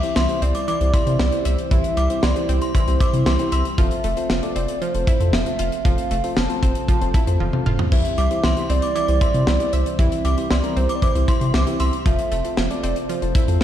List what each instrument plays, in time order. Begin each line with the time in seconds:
Already playing: string machine C3 E3 G3 E4, synth pluck G3, soft synth lead E5
0.03 synth keys C4 E4 G4 C5, closed hi-hat
0.16 analog synth bass C2, synth pluck E3, synth bell C6, snare
0.29 synth keys C4 E4 G4 C5, closed hi-hat
0.42 analog synth bass C2, synth pluck C4, soft synth lead D5, closed hi-hat
0.55 synth bell D6, closed hi-hat
0.68 synth pluck E3, synth bell D6, closed hi-hat
0.81 analog synth bass C2, synth keys C4 E4 G4 C5, closed hi-hat
0.94 synth pluck E4, synth bell C6, kick, closed hi-hat
1.07 analog synth bass C3, synth keys C4 E4 G4 C5, closed hi-hat
1.19 analog synth bass C2, synth pluck E3, snare
1.32 synth keys C4 E4 G4 C5, closed hi-hat
1.45 analog synth bass C2, soft synth lead C5, synth pluck E5, closed hi-hat
1.58 closed hi-hat
1.71 analog synth bass C2, synth pluck E3, synth keys C4 E4 G4 C5, soft synth lead E5, kick, closed hi-hat
1.84 closed hi-hat
1.97 analog synth bass C2, synth pluck G3, synth bell D6, closed hi-hat
2.10 synth keys C4 E4 G4 C5, closed hi-hat
2.23 analog synth bass C2, synth pluck E3, soft synth lead D5, synth bell C6, snare
2.36 synth keys C4 E4 G4 C5, closed hi-hat
2.49 analog synth bass C2, synth pluck C4, soft synth lead C5, closed hi-hat
2.62 synth bell C6, closed hi-hat
2.75 synth pluck E3, soft synth lead C5, synth bell C6, kick, closed hi-hat
2.88 analog synth bass C2, synth keys C4 E4 G4 C5, closed hi-hat
3.00 synth pluck E4, synth bell D6, kick, closed hi-hat
3.13 analog synth bass C3, synth keys C4 E4 G4 C5, closed hi-hat
3.26 analog synth bass C2, synth pluck E3, synth bell C6, snare
3.39 synth keys C4 E4 G4 C5, closed hi-hat
3.52 analog synth bass C2, synth pluck E5, synth bell C6, closed hi-hat
3.65 closed hi-hat
3.78 analog synth bass F1, string machine C3 F3 A3 C4, synth pluck F3, synth keys C4 F4 A4 C5, soft synth lead E5, kick, closed hi-hat
3.91 closed hi-hat
4.04 analog synth bass F1, synth pluck A3, closed hi-hat
4.17 synth keys C4 F4 A4 C5, closed hi-hat
4.30 analog synth bass F1, synth pluck F3, snare
4.43 synth keys C4 F4 A4 D5, closed hi-hat
4.56 analog synth bass F1, synth pluck C4, soft synth lead D5, closed hi-hat
4.68 closed hi-hat
4.81 synth pluck F3, soft synth lead C5, closed hi-hat
4.94 analog synth bass F1, synth keys C4 F4 A4 C5, closed hi-hat
5.07 synth pluck E4, kick, closed hi-hat
5.20 analog synth bass F2, synth keys C4 F4 A4 C5, closed hi-hat
5.33 analog synth bass F1, synth pluck F3, soft synth lead E5, snare
5.46 synth keys C4 F4 A4 C5, closed hi-hat
5.59 analog synth bass F1, synth pluck F4, closed hi-hat
5.72 closed hi-hat
5.85 analog synth bass F1, synth pluck F3, synth keys C4 F4 A4 C5, soft synth lead F5, kick, closed hi-hat
5.98 closed hi-hat
6.11 analog synth bass F1, synth pluck A3, closed hi-hat
6.24 synth keys C4 F4 A4 C5, closed hi-hat
6.37 analog synth bass F1, synth pluck F3, soft synth lead A5, snare
6.50 synth keys C4 F4 A4 C5, closed hi-hat
6.63 analog synth bass F1, synth pluck C4, kick, closed hi-hat
6.75 closed hi-hat
6.88 synth pluck F3, kick, closed hi-hat
7.01 analog synth bass F1, synth keys C4 F4 A4 C5, closed hi-hat
7.14 synth pluck E4, kick, closed hi-hat
7.27 analog synth bass F2, synth keys C4 F4 A4 C5, closed hi-hat
7.40 analog synth bass F1, synth pluck F3, high tom
7.53 synth keys C4 F4 A4 C5, mid tom
7.66 analog synth bass F1, synth pluck F4, mid tom
7.79 floor tom
7.92 analog synth bass C2, string machine C3 E3 G3, synth pluck E3, synth keys C4 E4 G4 C5, soft synth lead E5, kick, splash
8.05 closed hi-hat
8.18 analog synth bass C2, synth pluck G3, synth bell D6, closed hi-hat
8.31 synth keys C4 E4 G4 C5, closed hi-hat
8.44 analog synth bass C2, synth pluck E3, synth bell C6, snare
8.57 synth keys C4 E4 G4 C5, closed hi-hat
8.70 analog synth bass C2, synth pluck C4, soft synth lead D5, closed hi-hat
8.82 synth bell D6, closed hi-hat
8.95 synth pluck E3, synth bell D6, closed hi-hat
9.08 analog synth bass C2, synth keys C4 E4 G4 C5, closed hi-hat
9.21 synth pluck E4, synth bell C6, kick, closed hi-hat
9.34 analog synth bass C3, synth keys C4 E4 G4 C5, closed hi-hat
9.47 analog synth bass C2, synth pluck E3, snare
9.60 synth keys C4 E4 G4 D5, closed hi-hat
9.73 analog synth bass C2, soft synth lead C5, synth pluck E5, closed hi-hat
9.86 closed hi-hat
9.99 analog synth bass C2, synth pluck E3, synth keys C4 E4 G4 C5, soft synth lead E5, kick, closed hi-hat
10.12 closed hi-hat
10.25 analog synth bass C2, synth pluck G3, synth bell D6, closed hi-hat
10.38 synth keys C4 E4 G4 C5, closed hi-hat
10.51 analog synth bass C2, synth pluck E3, soft synth lead D5, synth bell C6, snare
10.63 synth keys C4 E4 G4 A#4, closed hi-hat
10.77 analog synth bass C2, synth pluck C4, soft synth lead C5, closed hi-hat
10.89 synth bell D6, closed hi-hat
10.95 soft synth lead D5
11.02 synth pluck E3, soft synth lead C5, synth bell D6, kick, closed hi-hat
11.15 analog synth bass C2, synth keys C4 E4 G4 C5, closed hi-hat
11.28 synth pluck E4, synth bell C6, kick, closed hi-hat
11.41 analog synth bass C3, synth keys C4 E4 G4 C5, closed hi-hat
11.54 analog synth bass C2, synth pluck E3, synth bell D6, snare
11.67 synth keys C4 E4 G4 C5, closed hi-hat
11.80 analog synth bass C2, synth pluck E5, synth bell C6, closed hi-hat
11.93 closed hi-hat
12.06 analog synth bass F1, synth pluck F3, string machine F3 A3, synth keys C4 F4 A4 C5, soft synth lead E5, kick, closed hi-hat
12.19 closed hi-hat
12.32 analog synth bass F1, synth pluck A3, closed hi-hat
12.45 synth keys C4 F4 A4 C5, closed hi-hat
12.57 analog synth bass F1, synth pluck F3, snare
12.70 synth keys C4 F4 A4 D5, closed hi-hat
12.83 analog synth bass F1, synth pluck C4, soft synth lead D5, closed hi-hat
12.96 closed hi-hat
13.09 synth pluck F3, soft synth lead C5, closed hi-hat
13.22 analog synth bass F1, synth keys C4 F4 A4 C5, closed hi-hat
13.35 synth pluck E4, kick, closed hi-hat
13.48 analog synth bass F2, synth keys C4 F4 A4 C5, closed hi-hat